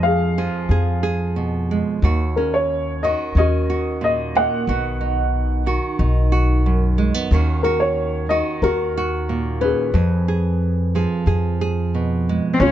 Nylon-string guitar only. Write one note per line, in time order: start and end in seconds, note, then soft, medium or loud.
0.00 1.99 F2 medium
0.00 0.37 F3 soft
0.00 1.70 G#3 soft
0.00 0.37 G#4 soft
0.38 1.99 F3 soft
0.38 0.70 G#4 medium
0.71 1.02 G#4 medium
1.03 1.99 G#4 medium
1.36 1.99 B2 soft
1.71 2.04 G#3 soft
2.04 4.68 D#2 medium
2.04 3.04 F#4 medium
2.37 3.36 C#4 soft
3.04 5.65 D#3 soft
3.04 3.69 F#4 medium
3.37 4.65 C#4 soft
3.70 4.69 F#4 medium
4.01 4.67 A#2 soft
4.35 4.64 A#3 soft
4.68 5.67 B2 medium
4.68 5.67 F#4 medium
5.01 5.99 D#4 soft
5.66 7.31 D#3 medium
5.66 6.31 F#4 medium
5.99 7.27 D#4 soft
6.32 7.27 F#4 medium
6.66 7.27 F#2 medium
6.98 7.14 G#3 medium
7.14 7.31 B3 soft
7.32 9.93 D#2 medium
7.32 8.29 D#3 medium
7.32 9.60 C#4 medium
7.32 7.63 F#4 medium
7.64 8.29 F#4 medium
8.30 9.94 D#3 soft
8.30 8.62 F#4 medium
8.64 8.96 F#4 medium
8.97 9.91 F#4 medium
9.29 9.94 A#2 soft
9.61 9.90 C#4 soft
9.94 12.56 F2 medium
9.94 10.27 G#4 medium
10.28 10.94 G#4 soft
10.95 12.57 F3 soft
10.95 11.26 G#4 soft
11.27 11.60 G#4 soft
11.61 12.57 G#4 medium
11.95 12.57 B2 soft
12.29 12.71 G#3 soft
12.61 12.71 C#3 medium
12.61 12.71 C#4 soft